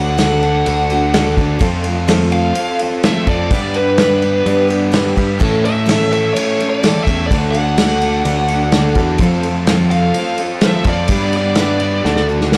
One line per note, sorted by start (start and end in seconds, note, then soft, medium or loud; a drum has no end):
0.00 0.62 D2 loud
0.00 0.17 D3 medium
0.00 0.17 D4 soft
0.00 0.18 D4 loud
0.00 0.18 F#4 medium
0.00 0.19 F#4 loud
0.00 0.18 A4 soft
0.00 0.20 A4 loud
0.00 3.47 A4 medium
0.00 1.34 F#5 loud
0.00 1.60 F#5 medium
0.00 1.61 D6 medium
0.18 0.66 D3 medium
0.18 0.65 A3 medium
0.18 0.65 D4 medium
0.18 0.66 F#4 medium
0.18 0.53 F#4 medium
0.18 0.68 A4 medium
0.18 0.53 A4 medium
0.18 0.53 D5 medium
0.18 0.53 F#5 medium
0.18 snare loud
0.18 ride loud
0.43 1.13 D4 medium
0.43 1.14 F#4 medium
0.43 1.14 A4 medium
0.43 ride medium
0.65 1.34 D2 loud
0.65 0.90 A3 medium
0.65 0.90 D4 medium
0.65 1.00 F#4 medium
0.65 0.91 F#4 medium
0.65 1.00 A4 medium
0.65 0.89 A4 medium
0.65 1.00 D5 medium
0.65 1.00 F#5 loud
0.65 ride loud
0.90 1.13 D4 medium
0.90 1.14 F#4 medium
0.90 1.14 A4 medium
0.90 ride medium
1.13 1.38 D3 medium
1.13 1.38 A3 medium
1.13 1.38 D4 medium
1.13 1.47 F#4 medium
1.13 1.38 F#4 loud
1.13 1.48 A4 medium
1.13 1.37 A4 loud
1.13 1.48 D5 medium
1.13 1.48 F#5 medium
1.13 snare loud
1.13 ride loud
1.37 1.59 D2 loud
1.37 1.60 D4 soft
1.37 1.61 F#4 medium
1.37 1.60 A4 medium
1.37 kick medium
1.37 ride medium
1.59 2.52 F2 medium
1.59 1.84 F3 medium
1.59 1.85 A3 loud
1.59 1.85 C4 loud
1.59 1.95 F4 medium
1.59 1.84 F4 loud
1.59 3.49 F4 medium
1.59 1.94 A4 medium
1.59 1.81 A4 loud
1.59 1.95 C5 medium
1.59 1.95 F5 loud
1.59 3.49 C6 medium
1.59 kick loud
1.59 ride loud
1.83 2.07 C4 soft
1.83 2.08 F4 medium
1.83 2.07 A4 medium
1.83 ride medium
2.07 2.55 F3 loud
2.07 2.54 A3 loud
2.07 2.56 C4 loud
2.07 2.42 F4 medium
2.07 2.56 F4 loud
2.07 2.42 A4 medium
2.07 2.56 A4 loud
2.07 2.42 C5 medium
2.07 2.43 E5 medium
2.07 snare loud
2.07 ride loud
2.32 3.03 C4 medium
2.32 3.04 F4 medium
2.32 3.05 A4 medium
2.32 2.77 F5 loud
2.32 ride medium
2.55 2.79 A3 medium
2.55 2.80 C4 medium
2.55 2.89 F4 medium
2.55 2.80 F4 medium
2.55 2.90 A4 medium
2.55 2.78 A4 medium
2.55 2.89 C5 medium
2.55 2.90 F5 medium
2.55 ride loud
2.79 3.05 C4 medium
2.79 3.04 F4 medium
2.79 3.03 A4 medium
2.79 ride medium
3.03 3.28 F3 medium
3.03 3.28 A3 medium
3.03 3.29 C4 medium
3.03 3.37 F4 medium
3.03 3.29 F4 medium
3.03 3.38 A4 medium
3.03 3.27 A4 loud
3.03 3.37 C5 medium
3.03 3.29 E5 loud
3.03 3.38 F5 medium
3.03 snare loud
3.03 ride loud
3.27 3.49 F2 loud
3.27 3.52 F4 medium
3.27 3.52 A4 medium
3.27 3.77 D5 loud
3.27 kick medium
3.27 ride medium
3.32 3.53 C4 medium
3.50 4.42 G2 medium
3.50 3.76 G3 medium
3.50 4.00 B3 loud
3.50 3.84 D4 medium
3.50 3.76 D4 medium
3.50 3.84 G4 medium
3.50 3.85 B4 medium
3.50 5.39 B4 medium
3.50 3.85 D5 medium
3.50 5.39 G5 medium
3.50 5.39 D6 medium
3.50 kick loud
3.50 ride loud
3.55 3.76 G4 medium
3.55 3.75 B4 loud
3.74 4.66 B4 medium
3.74 3.99 B4 medium
3.74 ride medium
3.78 4.01 D4 soft
3.78 4.00 G4 soft
3.98 4.45 G3 loud
3.98 4.22 B3 loud
3.98 4.32 D4 medium
3.98 4.32 G4 medium
3.98 4.32 B4 medium
3.98 4.33 D5 medium
3.98 snare loud
3.98 ride medium
4.02 4.46 D4 medium
4.02 4.47 G4 medium
4.02 4.48 B4 loud
4.22 4.93 B3 medium
4.22 4.93 D4 medium
4.22 4.94 B4 medium
4.22 ride medium
4.46 5.13 G2 medium
4.46 4.70 G3 medium
4.46 4.80 D4 medium
4.46 4.70 D4 medium
4.46 4.80 G4 medium
4.46 4.69 G4 medium
4.46 4.80 B4 medium
4.46 4.67 B4 medium
4.46 4.80 D5 loud
4.46 ride medium
4.68 4.90 D4 medium
4.68 4.92 G4 medium
4.68 4.92 B4 medium
4.68 ride medium
4.92 5.16 G3 medium
4.92 5.17 B3 medium
4.92 5.16 D4 medium
4.92 5.27 D4 medium
4.92 5.16 G4 medium
4.92 5.27 G4 medium
4.92 5.15 B4 medium
4.92 5.27 B4 medium
4.92 5.28 D5 medium
4.92 snare loud
4.92 ride loud
5.16 5.39 G2 loud
5.16 5.40 B3 medium
5.16 5.40 D4 soft
5.16 5.41 G4 medium
5.16 5.40 B4 medium
5.16 kick medium
5.16 ride medium
5.39 5.64 A2 loud
5.39 6.32 A2 loud
5.39 5.64 E3 loud
5.39 5.64 A3 loud
5.39 5.64 C#4 loud
5.39 5.74 E4 medium
5.39 5.65 E4 loud
5.39 5.75 A4 medium
5.39 11.06 A4 medium
5.39 5.64 A4 loud
5.39 5.75 C#5 medium
5.39 7.29 E5 medium
5.39 5.75 E5 medium
5.39 7.29 C#6 medium
5.39 kick loud
5.39 crash loud
5.65 5.85 A3 soft
5.65 5.85 C#4 soft
5.65 5.86 E4 soft
5.65 5.86 A4 soft
5.65 6.12 E5 medium
5.65 ride medium
5.86 6.34 A2 medium
5.86 6.35 E3 medium
5.86 6.34 A3 medium
5.86 6.34 C#4 medium
5.86 6.35 E4 medium
5.86 6.22 E4 medium
5.86 6.37 A4 medium
5.86 6.23 A4 medium
5.86 6.23 C#5 medium
5.86 snare loud
5.86 ride loud
5.90 6.13 C#4 loud
5.90 6.12 A4 medium
5.90 6.23 E5 medium
6.12 6.84 C#4 medium
6.12 6.84 E4 medium
6.12 6.85 A4 medium
6.12 6.33 E5 medium
6.12 ride medium
6.34 6.59 A3 medium
6.34 6.59 C#4 medium
6.34 6.70 E4 medium
6.34 6.60 E4 medium
6.34 6.70 A4 medium
6.34 6.58 A4 medium
6.34 6.69 C#5 medium
6.34 6.70 C#5 medium
6.34 6.70 E5 medium
6.34 ride loud
6.60 6.84 A3 soft
6.60 6.83 C#4 medium
6.60 6.84 E4 medium
6.60 6.83 A4 medium
6.60 ride medium
6.70 7.03 D5 loud
6.83 7.07 A2 medium
6.83 7.07 E3 medium
6.83 7.07 A3 medium
6.83 7.07 C#4 medium
6.83 7.17 E4 medium
6.83 7.07 E4 medium
6.83 7.18 A4 medium
6.83 7.05 A4 medium
6.83 7.17 C#5 medium
6.83 7.18 G5 medium
6.83 snare loud
6.83 ride loud
7.04 7.29 E2 loud
7.04 7.31 E4 medium
7.04 7.30 A4 medium
7.04 7.26 E5 medium
7.04 kick medium
7.04 ride medium
7.08 7.30 A3 medium
7.08 7.31 C#4 medium
7.27 7.34 D5 loud
7.31 8.22 D2 loud
7.31 7.55 D3 loud
7.31 7.55 A3 medium
7.31 7.53 D4 loud
7.31 7.65 F#4 medium
7.31 7.52 F#4 loud
7.31 7.65 A4 medium
7.31 7.51 A4 loud
7.31 7.65 D5 medium
7.31 9.19 F#5 medium
7.31 7.65 F#5 medium
7.31 9.19 D6 medium
7.31 kick loud
7.31 ride loud
7.51 7.78 D4 soft
7.51 7.78 F#4 soft
7.51 7.77 A4 soft
7.51 8.91 F#5 loud
7.51 ride medium
7.76 8.26 D3 medium
7.76 8.26 A3 medium
7.76 8.27 D4 loud
7.76 8.11 F#4 medium
7.76 8.26 F#4 medium
7.76 8.12 A4 medium
7.76 8.30 A4 loud
7.76 8.12 D5 medium
7.76 8.12 F#5 medium
7.76 snare loud
7.76 ride loud
8.02 8.72 D4 medium
8.02 8.73 F#4 medium
8.02 8.73 A4 medium
8.02 ride medium
8.24 8.93 D2 loud
8.24 8.50 A3 medium
8.24 8.58 F#4 medium
8.24 8.59 A4 medium
8.24 8.59 D5 medium
8.24 8.59 F#5 loud
8.24 ride loud
8.28 8.50 D4 medium
8.28 8.51 F#4 medium
8.28 8.50 A4 medium
8.48 8.74 A4 medium
8.48 ride medium
8.53 8.74 D4 medium
8.53 8.75 F#4 medium
8.71 8.98 A3 loud
8.71 9.06 F#4 medium
8.71 9.06 A4 medium
8.71 9.06 D5 medium
8.71 8.95 F#5 medium
8.71 8.95 A5 medium
8.71 snare loud
8.71 ride loud
8.75 8.98 D3 medium
8.75 8.98 D4 medium
8.75 8.97 F#4 loud
8.75 8.97 A4 medium
8.95 9.18 E2 loud
8.95 9.21 F#4 medium
8.95 9.21 A4 medium
8.95 9.19 F#5 medium
8.95 kick medium
8.95 ride medium
9.00 9.22 D4 medium
9.18 10.11 F2 loud
9.18 9.44 F3 loud
9.18 9.45 A3 medium
9.18 9.54 F4 medium
9.18 9.54 A4 medium
9.18 9.54 C5 medium
9.18 9.54 F5 loud
9.18 11.09 F5 medium
9.18 11.09 C6 medium
9.18 kick loud
9.18 ride loud
9.23 9.45 C4 loud
9.23 9.45 F4 loud
9.23 9.43 A4 loud
9.43 9.68 A4 medium
9.43 ride medium
9.47 9.67 C4 soft
9.47 9.69 F4 soft
9.65 10.16 F3 loud
9.65 10.14 A3 medium
9.65 10.16 C4 loud
9.65 10.00 F4 medium
9.65 10.00 A4 medium
9.65 10.01 C5 medium
9.65 10.01 F5 medium
9.65 snare loud
9.65 ride loud
9.69 10.16 F4 loud
9.69 10.16 A4 loud
9.91 10.63 C4 medium
9.91 10.63 F4 medium
9.91 10.64 A4 medium
9.91 10.35 F5 loud
9.91 ride medium
10.14 10.39 A3 medium
10.14 10.40 C4 medium
10.14 10.49 F4 medium
10.14 10.40 F4 medium
10.14 10.49 A4 medium
10.14 10.49 C5 medium
10.14 10.49 F5 medium
10.14 ride loud
10.19 10.39 A4 medium
10.38 10.64 F4 medium
10.38 10.63 A4 medium
10.38 ride medium
10.42 10.63 C4 medium
10.61 10.87 F3 medium
10.61 10.87 A3 medium
10.61 10.87 C4 medium
10.61 10.96 F4 medium
10.61 10.96 A4 medium
10.61 10.86 A4 medium
10.61 10.96 C5 medium
10.61 10.97 F5 medium
10.61 snare loud
10.61 ride loud
10.65 10.88 F4 medium
10.65 10.88 E5 loud
10.84 11.07 F2 loud
10.84 11.10 A4 medium
10.84 kick medium
10.84 ride medium
10.89 11.10 C4 soft
10.89 11.11 F4 medium
10.89 11.35 D5 loud
11.08 12.00 G2 medium
11.08 11.34 G3 medium
11.08 11.56 B3 loud
11.08 11.44 D4 medium
11.08 11.34 D4 loud
11.08 11.44 G4 medium
11.08 11.34 G4 medium
11.08 11.44 B4 medium
11.08 12.04 B4 medium
11.08 11.34 B4 medium
11.08 11.44 D5 medium
11.08 12.04 G5 medium
11.08 12.57 D6 medium
11.08 kick loud
11.08 ride loud
11.33 11.58 B4 medium
11.33 ride medium
11.37 11.57 D4 soft
11.37 11.57 G4 soft
11.37 12.26 D5 medium
11.55 12.05 G3 medium
11.55 11.81 B3 loud
11.55 11.90 D4 medium
11.55 12.05 D4 medium
11.55 11.91 G4 medium
11.55 12.05 G4 medium
11.55 11.90 B4 medium
11.55 12.06 B4 loud
11.55 11.91 E5 medium
11.55 snare loud
11.55 ride loud
11.80 12.04 B3 medium
11.80 12.04 D4 medium
11.80 12.03 B4 medium
11.80 ride medium
12.04 12.57 D2 medium
12.04 12.52 D3 medium
12.04 12.29 A3 medium
12.04 12.38 D4 medium
12.04 12.30 D4 medium
12.04 12.39 F#4 medium
12.04 12.28 F#4 medium
12.04 12.39 A4 medium
12.04 12.57 A4 medium
12.04 12.39 D5 medium
12.04 12.57 F#5 medium
12.04 snare medium
12.09 12.28 A4 medium
12.16 snare medium
12.29 12.52 D4 medium
12.29 12.53 F#4 medium
12.29 12.52 A4 medium
12.29 12.51 F#5 medium
12.41 snare medium
12.52 12.57 D3 medium
12.52 12.57 A3 medium
12.52 12.57 D4 medium
12.52 12.57 F#4 medium
12.52 12.57 A4 medium
12.52 12.57 D5 medium
12.52 12.57 A5 medium
12.52 snare medium